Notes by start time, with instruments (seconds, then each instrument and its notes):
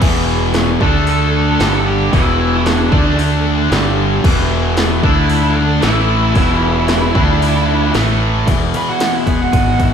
0.01 distorted electric guitar E2 B2 E3, string machine E3 B3 G#4, kick, crash
0.54 snare, open hi-hat
0.80 fingered electric bass D2, distorted electric guitar D3 A3 D4, string machine D3 A3 A4, lead electric guitar A4 A5, kick
1.07 lead electric guitar A4 A5, open hi-hat
1.59 fingered electric bass G1, distorted electric guitar G2 D3 G3, string machine G3 G4, snare, open hi-hat
1.88 lead electric guitar G4 G5
2.12 fingered electric bass E1, distorted electric guitar E2 B2 E3, string machine E3 B3 G#4, lead electric guitar E4 E5, kick, open hi-hat
2.65 lead electric guitar D4 D5, snare, open hi-hat
2.91 fingered electric bass D2, distorted electric guitar D3 A3 D4, string machine D3 A3 A4, kick
3.19 open hi-hat
3.70 fingered electric bass G1, distorted electric guitar G2 D3 G3, string machine D3 G3 G4, snare, open hi-hat
4.24 fingered electric bass E1, distorted electric guitar E2 B2 E3, string machine E3 B3 G#4, kick, crash
4.77 snare, open hi-hat
5.03 fingered electric bass D2, distorted electric guitar D3 A3 D4, string machine D3 A3 A4, lead electric guitar E4 E5, kick
5.30 open hi-hat
5.56 lead electric guitar D4 D5
5.81 fingered electric bass A1, distorted electric guitar A2 E3 A3, string machine E3, lead electric guitar E4 E5, snare, open hi-hat
6.35 fingered electric bass E1, distorted electric guitar E2 B2 E3, string machine E3 B3 G#4, kick, open hi-hat
6.88 snare, open hi-hat
7.15 fingered electric bass D2, distorted electric guitar D3 A3 D4, string machine D3 A3 A4, kick
7.42 open hi-hat
7.94 fingered electric bass A1, distorted electric guitar A2 E3 A3, string machine E3, snare, open hi-hat
8.46 fingered electric bass E1, distorted electric guitar E2 B2 E3, clean electric guitar E2, kick, ride
8.74 lead electric guitar B4, ride
8.89 lead electric guitar F#4
9.00 clean electric guitar G#3, snare, ride
9.15 lead electric guitar E4
9.26 fingered electric bass E1, clean electric guitar B3, lead electric guitar G#4, kick, ride
9.42 lead electric guitar F#4
9.52 fingered electric bass G#1, clean electric guitar G#3, kick, ride
9.78 clean electric guitar E3, kick, ride